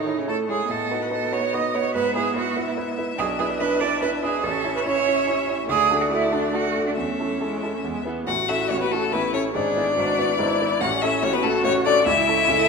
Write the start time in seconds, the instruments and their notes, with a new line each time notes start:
Already playing: grand piano A2 E4 A4 C#5, viola D#3, cello D#4, violin D#4
0.06 grand piano E4 A4 C#5
0.17 viola C#3, cello C#4, violin C#4
0.28 viola A3, grand piano E4 A4 C#5, cello A4, violin A4
0.48 viola G#3, grand piano E4 A4 C#5, violin G#4, cello G#4
0.70 grand piano A2, viola B3, cello A4, violin D#5
0.91 grand piano D#4 F#4 B4
1.02 cello B4
1.10 grand piano D#4 F#4 B4, cello A4
1.32 grand piano D#4 F#4 B4, cello C#5
1.53 grand piano D#4 F#4 B4, cello D#5
1.74 grand piano D#4 F#4 B4, cello C#5
1.94 grand piano G#2, cello B4, violin E5
2.15 grand piano E4 B4, cello G#4
2.36 grand piano E4 B4, cello F#4
2.57 grand piano E4 B4
2.67 cello E4
2.77 grand piano E4 B4
2.98 grand piano E4 B4
3.18 grand piano B1, viola D4, cello G#4
3.39 grand piano D4 E4 B4, cello G#4
3.60 grand piano D4 E4 B4, cello B4
3.80 grand piano D4 E4 B4, cello D5
4.01 grand piano D4 E4 B4, cello B4
4.23 grand piano D4 E4 B4, cello G#4
4.42 grand piano A1, viola C#4, cello A4, violin E5
4.64 grand piano C#4 E4 C#5
4.75 cello B4
4.85 grand piano C#4 E4 C#5, cello C#5
5.06 grand piano C#4 E4 C#5
5.27 grand piano C#4 E4 C#5
5.48 grand piano C#4 E4 C#5
5.68 grand piano D2, viola A3, cello G#4, violin D5
5.90 grand piano D4 F#4 A4
6.01 cello F#4
6.11 grand piano D4 F#4 A4, cello E4
6.32 grand piano D4 F#4 A4, cello D4
6.53 grand piano D4 F#4 A4, cello F#4
6.75 grand piano D4 F#4 A4
6.87 cello D4
6.97 grand piano E2, cello C#4, violin E5
7.19 grand piano C#4 E4 A4
7.40 viola G#3, grand piano C#4 E4 A4
7.63 grand piano C#4 E4 A4
7.74 viola A3
7.84 grand piano E2, viola G#3
8.05 grand piano B3 E4 G#4, viola B3
8.27 grand piano A1 A2, cello F#4, viola F#4, violin F#5
8.48 grand piano C#4 E4 A4, cello E4, violin E5
8.70 grand piano A1 A2, cello C#4, violin C#5
8.81 cello B3, violin B4
8.91 cello A3, grand piano C#4 E4 A4, violin A4
9.12 grand piano A1 A2, cello B3, viola E4, violin B4
9.33 grand piano C#4 E4 A4, cello C#4, violin C#5
9.54 grand piano G#1 G#2, cello D4, viola G#4, violin D5
9.76 grand piano B3 E4 B4
9.97 grand piano G#1 G#2, viola F#4
10.18 grand piano B3 E4 B4
10.39 grand piano G#1 G#2, viola E4
10.61 grand piano B3 E4 B4
10.80 grand piano A1 A2, viola C#4, cello F#4, violin F#5
11.02 grand piano C#4 E4 A4, cello E4, violin E5
11.22 grand piano A1 A2, cello C#4, viola F#4, violin C#5
11.33 cello B3, violin B4
11.43 cello A3, grand piano C#4 E4 A4, violin A4
11.64 grand piano A1 A2, cello C#4, violin C#5
11.85 grand piano C#4 E4 A4, cello D4, violin D5
12.06 grand piano C#2 C#3, cello E4, viola E4, violin E5
12.28 grand piano C#4 E4 A4
12.48 grand piano C#2 C#3, viola A4